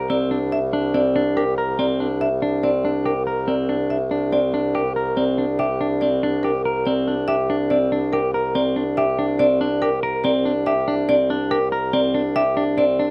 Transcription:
Already playing: C2 A#4
0.10 C4 D5
0.31 D4
0.52 E5
0.73 D4
0.94 C4 D5
1.16 D4
1.37 G4 A#4
1.58 A#4
1.79 C4 D5
2.00 D4
2.21 E5
2.42 D4
2.63 C4 D5
2.85 D4
3.05 G4 A#4
3.27 A#4
3.48 C4 D5
3.69 D4
3.90 E5
4.11 D4
4.33 C4 D5
4.54 D4
4.75 G4 A#4
4.96 A#4
5.17 C4 D5
5.38 D4
5.59 G4 E5
5.81 D4
6.01 C4 D5
6.23 D4
6.43 G4 A#4
6.65 A#4
6.86 C4 D5
7.08 D4
7.28 G4 E5
7.50 D4
7.70 C4 D5
7.92 D4
8.13 G4 A#4
8.34 A#4
8.55 C4 D5
8.76 D4
8.97 G4 E5
9.19 D4
9.39 C4 D5
9.61 D4
9.82 G4 A#4
10.03 A#4
10.24 C4 D5
10.45 D4
10.66 G4 E5
10.88 D4
11.09 C4 D5
11.30 D4
11.51 G4 A#4
11.72 A#4
11.93 C4 D5
12.14 D4
12.36 G4 E5
12.57 D4
12.78 C4 D5
12.99 D4

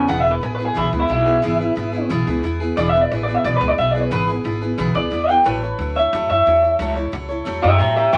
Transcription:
0.07 E1 C#3 E3 B3 E4 G#4 B4 F#5
0.20 E5
0.24 B3 E4 G#4 B4
0.31 B4
0.41 A1 B3 E4 G#4 B4
0.55 G#4 B4
0.60 B3 E4 B4
0.65 G#4
0.74 B1 C#3 E3 B3 E4 G#4 B4
0.91 C#2 B3 E4 G#4 B4
1.00 E4
1.08 B1 B3 E4 G#4 B4
1.25 B3 E4 G#4 B4
1.42 G#1 C#3 E3 B3 E4 G#4 B4
1.59 B3 E4 G#4 B4
1.75 G#1 B3 E4 G#4 B4
1.92 B3 E4 G#4 B4
2.10 B1 C#3 E3 B3 E4 G#4 B4
2.27 C#2 B3 E4 G#4 B4
2.43 E2 B3 E4 G#4 B4
2.60 B3 E4 G#4 B4
2.77 E1 C#3 E3 B3 E4 G#4 B4 D5
2.89 E5
2.94 B3 E4 G#4 B4
3.01 D5
3.11 A1 B3 E4 G#4 B4
3.23 D5
3.28 B3 E4 G#4 B4
3.35 E5
3.45 B1 C#3 E3 B3 E4 G#4 B4 D5
3.57 B4
3.61 C#2 B3 E4 G#4 B4
3.68 D5
3.78 B1 B3 E4 G#4 B4 E5
3.91 G#4 D5
3.96 B3 E4 B4
4.01 B4
4.11 G#1 C#3 E3 B3 E4 G#4 B4
4.27 B3 E4 G#4 B4
4.44 G#1 B3 E4 G#4 B4
4.61 B3 E4 G#4 B4
4.78 B1 C#3 E3 B3 E4 G#4 B4
4.94 C#2 B3 E4 G#4 B4 D5
5.11 E2 B3 E4 G#4 B4
5.29 B3 E4 G#4 B4 G5
5.44 A1 F#3 A3 E4 A4 B4 C#5
5.62 E4 A4 C#5
5.79 D2 F#3 E4 A4 C#5
5.96 E4 A4 C#5 E5
6.13 E2 F#3 A3 E4 A4 C#5
6.30 F#2 E4 A4 C#5 E5
6.45 E2 F#3 E4 A4 C#5
6.61 E4 A4 C#5
6.79 C#2 F#3 A3 E4 A4 C#5
6.95 E4 A4 C#5
7.12 C#2 F#3 E4 A4 C#5
7.29 E4 A4 C#5
7.45 E2 F#3 A3 E4 A4 C#5
7.62 F#2 E4 G4 A4 C#5 E5
7.78 A2 F#3 E4 G4 A4 C#5 E5
7.96 E4 G4 A4 C#5 E5
8.12 A1 A2 E3 F#3 A3 E4 A4 B4 G5

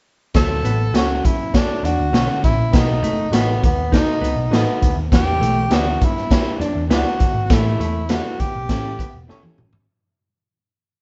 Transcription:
0.34 D2 F#3 D4 F#4 A4 C#5, kick, snare, closed hi-hat
0.63 A1 B3, closed hi-hat
0.93 C#2 C#4 F#4 A4 C#5, snare, closed hi-hat
1.24 F#2 E4, kick, closed hi-hat
1.54 D4 F#4 A4 C#5, kick, snare, closed hi-hat
1.83 E2 D4 F#4, closed hi-hat
1.99 D2
2.13 B1 D3 C#4 F#4 A4 C#5, snare, closed hi-hat
2.44 A1 E4, kick, closed hi-hat
2.57 A#1
2.73 B1 B2 B3 D#4 F#4 A4 B4, kick, snare, closed hi-hat
3.02 F#1 A3, closed hi-hat
3.31 A1 B3 D#4 F#4 A4 C#5 D#5, snare, closed hi-hat
3.63 D#2 B3, kick, closed hi-hat
3.92 D#4 F#4 A4 B4, kick, snare, closed hi-hat
4.21 C#2 B3, closed hi-hat
4.36 B1
4.51 A1 B3 D#4 F#4 A4 B4 D#5, snare, closed hi-hat
4.82 D2, kick, closed hi-hat
4.95 D#2
5.12 E2 E3 D4 E4 G4 B4, kick, snare, closed hi-hat
5.40 B1 A3, closed hi-hat
5.70 D2 G3 B3 D4 E4 G4 B4 D5, snare, closed hi-hat
5.74 F#4
6.01 G2 E4, kick, closed hi-hat
6.17 snare
6.31 D4 E4 G4 B4, kick, snare, closed hi-hat
6.60 F#2 D4, closed hi-hat
6.75 E2
6.89 C#2 G3 B3 D4 E4 G4 B4 D5, snare, closed hi-hat
6.95 F#4
7.20 G1, kick, closed hi-hat
7.35 G#1
7.50 A1 A2 A3 D4 E4 G4 A4, kick, snare, closed hi-hat
7.79 E2 A3, closed hi-hat
8.09 G3 B3 D4 E4 F#4 G4 A4 D5, snare, closed hi-hat
8.40 G1 G4, kick, closed hi-hat
8.54 B1
8.69 A1 A2 C#4 E4 G4 A4, kick, snare, closed hi-hat
8.99 B3, kick, closed hi-hat
9.14 E1
9.28 C#4 E4 G4 A4 C#5, snare
9.43 high tom
9.58 G1, mid tom
9.73 G#1, floor tom

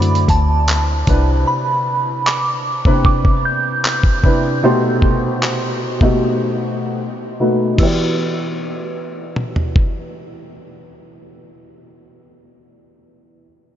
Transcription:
Already playing: F#2 D3 A3 C4 E4 F#4 B4 D5 B5
0.02 closed hi-hat
0.15 closed hi-hat
0.28 D2 A5, kick, closed hi-hat
0.68 clap, closed hi-hat
1.07 C2 C3 C4 D4 E4 B4, kick, closed hi-hat
1.47 B5
2.27 D6, clap
2.85 C3 C4 D4 E4 B4, kick
3.05 D6, kick
3.25 kick
3.45 G6
3.85 clap
4.03 kick
4.23 C3 C4 D4 E4 B4, kick
4.63 B2 A3 D#4 G4 C5
5.02 kick
5.43 clap
6.01 B2 A3 D#4 G4 D#5, kick
7.39 B2 A3 D#4 F#4 B4
7.76 E3 B3 F#4 E6, kick, crash
7.81 G4 D5
9.36 mid tom
9.56 floor tom
9.76 kick

